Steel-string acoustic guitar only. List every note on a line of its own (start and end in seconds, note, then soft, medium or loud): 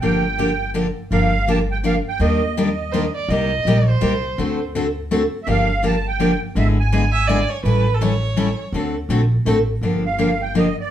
0.02 0.23 D3 medium
0.02 0.23 F3 medium
0.02 0.23 A#3 medium
0.02 0.23 D4 medium
0.02 0.23 G4 medium
0.38 0.49 D3 medium
0.38 0.50 F3 medium
0.38 0.50 A#3 medium
0.38 0.50 D4 medium
0.38 0.50 G4 medium
0.74 0.85 D3 medium
0.74 0.86 F3 medium
0.74 0.86 A#3 medium
0.74 0.86 D4 medium
0.74 0.86 G4 medium
1.12 1.32 D3 medium
1.12 1.32 F3 medium
1.12 1.32 A#3 medium
1.12 1.33 D4 medium
1.12 1.33 G4 medium
1.48 1.58 D3 medium
1.48 1.59 F3 medium
1.48 1.59 A#3 medium
1.48 1.59 D4 medium
1.48 1.59 G4 medium
1.84 1.95 D3 medium
1.84 1.95 F3 medium
1.84 1.95 A#3 medium
1.84 1.95 D4 medium
1.84 1.95 G4 medium
2.20 2.40 D#3 medium
2.20 2.41 G3 medium
2.20 2.41 A#3 medium
2.20 2.41 D4 medium
2.20 2.41 G4 medium
2.57 2.68 D#3 medium
2.57 2.68 G3 medium
2.57 2.68 A#3 medium
2.57 2.68 D4 medium
2.57 2.68 G4 medium
2.93 3.04 D#3 medium
2.93 3.04 G3 medium
2.93 3.04 A#3 medium
2.93 3.04 D4 medium
2.93 3.05 G4 medium
3.30 3.50 C3 medium
3.30 3.50 G3 medium
3.30 3.50 A#3 medium
3.30 3.51 D#4 medium
3.30 3.51 G4 medium
3.67 3.77 C3 medium
3.67 3.77 G3 medium
3.67 3.77 A#3 medium
3.67 3.77 D#4 medium
3.67 3.78 G4 loud
4.01 4.12 C3 medium
4.01 4.12 G3 medium
4.01 4.12 A#3 medium
4.01 4.13 D#4 medium
4.01 4.13 G4 loud
4.38 4.59 D3 medium
4.38 4.59 A3 medium
4.38 4.59 C4 medium
4.38 4.59 F#4 medium
4.38 4.59 A4 medium
4.75 4.86 D3 medium
4.75 4.86 A3 medium
4.75 4.86 C4 medium
4.75 4.86 F#4 medium
4.75 4.86 A4 loud
5.11 5.22 D3 medium
5.11 5.22 A3 medium
5.11 5.22 C4 medium
5.11 5.22 F#4 medium
5.11 5.22 A4 medium
5.47 5.67 D3 medium
5.47 5.67 F3 medium
5.47 5.68 A#3 medium
5.47 5.68 D4 medium
5.47 5.68 G4 medium
5.83 5.94 D3 medium
5.83 5.94 F3 medium
5.83 5.94 A#3 medium
5.83 5.94 D4 medium
5.83 5.94 G4 medium
6.20 6.30 D3 medium
6.20 6.30 F3 medium
6.20 6.31 A#3 medium
6.20 6.31 D4 medium
6.20 6.31 G4 medium
6.56 6.76 D3 medium
6.56 6.77 G#3 medium
6.56 6.77 B3 medium
6.56 6.77 E4 medium
6.56 6.77 G#4 medium
6.92 7.03 D3 medium
6.92 7.03 G#3 medium
6.92 7.03 B3 medium
6.92 7.04 E4 medium
6.92 7.03 G#4 medium
7.29 7.39 D3 medium
7.29 7.40 G#3 medium
7.29 7.40 B3 medium
7.29 7.40 E4 medium
7.29 7.40 G#4 medium
7.65 7.85 E3 medium
7.65 7.86 G3 medium
7.65 7.86 C#4 medium
7.65 7.86 E4 medium
7.65 7.86 A4 medium
8.01 8.12 E3 medium
8.01 8.12 G3 medium
8.01 8.12 C#4 medium
8.01 8.12 E4 medium
8.01 8.13 A4 medium
8.36 8.48 E3 medium
8.36 8.48 G3 medium
8.36 8.48 C#4 medium
8.36 8.48 E4 medium
8.36 8.48 A4 medium
8.74 8.94 D3 medium
8.74 8.94 A3 medium
8.74 8.95 C4 medium
8.74 8.95 F#4 medium
8.74 8.95 A4 medium
9.10 9.21 D3 medium
9.10 9.21 A3 medium
9.10 9.21 C4 medium
9.10 9.21 F#4 medium
9.10 9.21 A4 medium
9.46 9.57 D3 medium
9.46 9.57 A3 medium
9.46 9.57 C4 medium
9.46 9.58 F#4 medium
9.46 9.57 A4 medium
9.83 10.03 D3 medium
9.83 10.03 F3 medium
9.83 10.03 A#3 medium
9.83 10.03 D4 medium
9.83 10.03 G4 medium
10.18 10.29 D3 medium
10.18 10.30 F3 medium
10.18 10.30 A#3 medium
10.18 10.30 D4 medium
10.18 10.30 G4 medium
10.55 10.66 D3 medium
10.55 10.66 F3 medium
10.55 10.66 A#3 medium
10.55 10.66 D4 medium
10.55 10.66 G4 medium